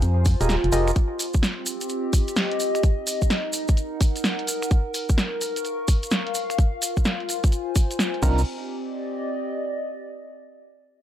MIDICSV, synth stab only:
0, 0, Header, 1, 2, 480
1, 0, Start_track
1, 0, Key_signature, -3, "minor"
1, 0, Tempo, 468750
1, 983, Time_signature, 4, 2, 24, 8
1, 11284, End_track
2, 0, Start_track
2, 0, Title_t, "Synth stab"
2, 0, Program_c, 0, 62
2, 416, Note_on_c, 0, 65, 76
2, 416, Note_on_c, 0, 67, 67
2, 416, Note_on_c, 0, 68, 69
2, 416, Note_on_c, 0, 70, 69
2, 416, Note_on_c, 0, 75, 82
2, 566, Note_off_c, 0, 65, 0
2, 566, Note_off_c, 0, 70, 0
2, 567, Note_off_c, 0, 67, 0
2, 567, Note_off_c, 0, 68, 0
2, 567, Note_off_c, 0, 75, 0
2, 741, Note_on_c, 0, 65, 86
2, 742, Note_on_c, 0, 67, 80
2, 742, Note_on_c, 0, 68, 80
2, 742, Note_on_c, 0, 70, 76
2, 742, Note_on_c, 0, 75, 96
2, 932, Note_off_c, 0, 65, 0
2, 932, Note_off_c, 0, 67, 0
2, 932, Note_off_c, 0, 68, 0
2, 932, Note_off_c, 0, 70, 0
2, 932, Note_off_c, 0, 75, 0
2, 8423, Note_on_c, 0, 60, 86
2, 8423, Note_on_c, 0, 62, 77
2, 8423, Note_on_c, 0, 63, 76
2, 8423, Note_on_c, 0, 65, 78
2, 8423, Note_on_c, 0, 70, 96
2, 8614, Note_off_c, 0, 60, 0
2, 8614, Note_off_c, 0, 62, 0
2, 8614, Note_off_c, 0, 63, 0
2, 8614, Note_off_c, 0, 65, 0
2, 8614, Note_off_c, 0, 70, 0
2, 11284, End_track
0, 0, End_of_file